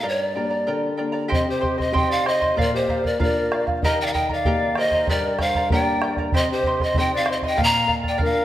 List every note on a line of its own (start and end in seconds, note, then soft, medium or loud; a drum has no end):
0.00 0.66 G2 medium
0.00 0.36 G4 medium
0.00 0.35 A#4 medium
0.00 0.35 D5 medium
0.00 0.10 F5 soft
0.00 0.34 G5 medium
0.00 0.35 A#5 medium
0.09 0.26 C#5 medium
0.26 1.02 D5 medium
0.35 0.87 A#3 soft
0.35 0.87 D4 soft
0.35 0.87 G4 soft
0.35 0.50 A#4 soft
0.35 0.50 D5 medium
0.35 0.52 G5 soft
0.35 0.49 A#5 medium
0.50 0.66 A#4 soft
0.50 0.67 D5 soft
0.50 0.67 A#5 soft
0.67 1.30 D3 medium
0.67 0.99 G4 medium
0.67 0.96 A#4 medium
0.67 0.97 D5 medium
0.67 0.96 G5 medium
0.67 0.98 A#5 medium
0.97 1.25 A#3 soft
0.97 1.25 D4 soft
0.97 1.26 G4 soft
0.97 1.12 A#4 medium
0.97 1.12 D5 medium
0.97 1.15 G5 medium
0.97 1.11 A#5 medium
1.12 1.29 A#4 soft
1.12 1.29 D5 soft
1.12 1.29 A#5 medium
1.28 2.53 C3 medium
1.28 1.61 G4 medium
1.28 1.60 C5 medium
1.28 1.47 C5 medium
1.28 1.60 D#5 medium
1.28 1.59 G5 medium
1.28 1.60 C6 medium
1.28 bombo low medium
1.35 1.48 D#5 medium
1.48 1.77 G4 medium
1.48 1.78 C5 medium
1.61 1.78 C5 medium
1.61 1.77 D#5 medium
1.61 1.78 G5 medium
1.61 1.77 C6 medium
1.61 bombo low medium
1.78 1.94 C5 medium
1.78 1.92 C5 soft
1.78 1.93 D#5 soft
1.78 1.95 D#5 medium
1.78 1.93 C6 soft
1.78 bombo low medium
1.91 2.54 C4 soft
1.91 2.54 D#4 soft
1.91 2.54 G4 medium
1.91 2.25 G4 medium
1.91 2.25 C5 medium
1.91 2.26 D#5 medium
1.91 2.11 D#5 medium
1.91 2.24 G5 medium
1.91 2.25 C6 medium
1.95 2.13 G5 medium
1.95 bombo low medium
2.10 2.28 D5 medium
2.10 2.29 F5 medium
2.25 2.41 C5 medium
2.25 2.58 C5 medium
2.25 2.40 D#5 medium
2.25 2.58 D#5 medium
2.25 2.41 G5 soft
2.25 2.40 C6 medium
2.25 bombo rim medium
2.41 2.56 C5 soft
2.41 2.57 D#5 medium
2.41 2.57 C6 medium
2.41 bombo low soft
2.56 3.78 A#2 medium
2.56 2.88 A#4 medium
2.56 2.73 A#4 medium
2.56 2.88 D5 medium
2.56 2.89 F5 medium
2.56 bombo low medium
2.61 2.74 D5 medium
2.73 3.06 G4 medium
2.73 3.08 C5 medium
2.88 3.05 A#4 medium
2.88 3.05 D5 medium
2.88 3.03 F5 medium
2.88 bombo low soft
3.04 3.20 A#4 medium
3.04 3.21 D5 medium
3.04 3.19 D5 soft
3.04 3.20 F5 soft
3.04 bombo low soft
3.19 3.81 A#3 soft
3.19 3.80 D4 soft
3.19 3.81 F4 medium
3.19 3.50 A#4 medium
3.19 3.64 A#4 medium
3.19 3.50 D5 medium
3.19 3.65 D5 medium
3.19 3.52 F5 medium
3.19 bombo low medium
3.52 3.67 A#4 medium
3.52 3.67 D5 medium
3.52 3.66 F5 medium
3.52 bombo rim medium
3.67 3.84 D5 soft
3.67 3.83 F5 medium
3.67 bombo low medium
3.82 5.04 D#3 medium
3.82 4.15 G4 medium
3.82 3.97 A#4 medium
3.82 4.13 A#4 medium
3.82 3.98 D#5 medium
3.82 4.13 D#5 medium
3.82 4.12 G5 medium
3.82 4.14 A#5 medium
3.82 bombo low medium
3.97 4.05 D#5 medium
3.97 4.08 G5 medium
4.03 4.15 D5 medium
4.03 4.15 F5 medium
4.13 4.30 A#4 medium
4.13 4.30 D#5 medium
4.13 4.29 D#5 medium
4.13 4.29 G5 medium
4.13 4.30 G5 medium
4.13 4.28 A#5 medium
4.13 bombo low medium
4.29 4.45 A#4 soft
4.29 4.80 D5 medium
4.29 4.46 D#5 soft
4.29 4.45 A#5 medium
4.29 bombo low soft
4.34 4.81 F5 medium
4.45 5.06 A#3 soft
4.45 5.06 D#4 soft
4.45 4.77 G4 medium
4.45 5.06 G4 medium
4.45 4.76 A#4 medium
4.45 4.76 G5 medium
4.45 4.76 A#5 medium
4.45 bombo low medium
4.75 4.93 A#4 medium
4.75 5.12 C5 medium
4.75 4.93 D#5 medium
4.75 5.12 D#5 medium
4.75 4.92 G5 medium
4.75 4.92 A#5 medium
4.75 bombo rim medium
4.91 5.09 A#4 soft
4.91 5.09 D#5 medium
4.91 5.08 A#5 medium
4.91 bombo low soft
5.07 6.28 G2 medium
5.07 5.40 G4 medium
5.07 5.38 A#4 medium
5.07 5.39 D5 medium
5.07 5.40 D5 medium
5.07 5.37 G5 medium
5.07 bombo low medium
5.11 5.40 A#4 medium
5.11 5.40 A#5 medium
5.39 5.55 A#4 medium
5.39 5.69 C5 medium
5.39 5.55 D5 medium
5.39 5.69 F5 medium
5.39 5.54 G5 medium
5.39 5.55 A#5 medium
5.39 bombo rim soft
5.39 bombo low medium
5.55 5.71 A#4 soft
5.55 5.72 D5 soft
5.55 5.71 A#5 soft
5.55 bombo low medium
5.70 6.30 A#3 soft
5.70 6.31 D4 soft
5.70 6.31 G4 medium
5.70 6.02 G4 medium
5.70 6.02 A#4 medium
5.70 6.02 D5 medium
5.70 6.01 G5 medium
5.70 6.02 A#5 medium
5.70 bombo low medium
5.74 6.16 D5 medium
5.74 6.16 G5 medium
6.02 6.18 A#4 medium
6.02 6.18 D5 medium
6.02 6.18 G5 medium
6.02 6.17 A#5 medium
6.02 bombo rim medium
6.17 6.34 A#4 soft
6.17 6.34 D5 soft
6.17 6.33 A#5 medium
6.17 bombo low medium
6.32 7.54 C3 medium
6.32 6.65 G4 medium
6.32 6.65 C5 medium
6.32 6.48 C5 medium
6.32 6.65 D#5 medium
6.32 6.65 G5 medium
6.32 6.65 C6 medium
6.32 bombo low medium
6.37 6.49 D#5 loud
6.51 6.84 G4 medium
6.51 6.85 C5 medium
6.63 6.81 C5 medium
6.63 6.81 D#5 medium
6.63 6.81 G5 medium
6.63 6.80 C6 medium
6.63 bombo low medium
6.80 6.96 C5 medium
6.80 6.97 C5 soft
6.80 6.97 D#5 soft
6.80 6.97 D#5 medium
6.80 6.96 C6 soft
6.80 bombo low medium
6.94 7.56 C4 soft
6.94 7.56 D#4 soft
6.94 7.56 G4 soft
6.94 7.27 G4 medium
6.94 7.26 C5 medium
6.94 7.11 D#5 medium
6.94 7.25 G5 medium
6.94 7.27 C6 medium
6.94 bombo low medium
6.99 7.26 D#5 medium
6.99 7.12 G5 loud
7.13 7.27 D5 medium
7.13 7.28 F5 medium
7.26 7.42 C5 medium
7.26 7.35 C5 medium
7.26 7.43 D#5 medium
7.26 7.42 G5 medium
7.26 7.42 C6 medium
7.26 bombo rim medium
7.32 7.38 D#5 medium
7.42 7.57 C5 soft
7.42 7.57 D#5 soft
7.42 7.62 D#5 medium
7.42 7.58 C6 medium
7.42 bombo low soft
7.48 7.65 G5 medium
7.57 8.45 A#2 medium
7.57 7.86 A#4 medium
7.57 7.86 D5 medium
7.57 7.87 F5 medium
7.57 7.90 F5 medium
7.57 bombo low medium
7.64 7.92 A#5 loud
7.87 8.03 A#4 soft
7.87 8.03 D5 medium
7.87 8.02 F5 medium
7.87 bombo low soft
8.03 8.17 D5 soft
8.03 8.17 F5 soft
8.03 bombo low soft
8.08 8.21 D5 medium
8.08 8.21 G5 medium
8.18 8.45 A#3 soft
8.18 8.45 D4 soft
8.18 8.45 F4 medium
8.18 8.45 A#4 medium
8.18 8.45 D5 medium
8.18 8.45 F5 medium
8.18 bombo low medium
8.25 8.45 F5 medium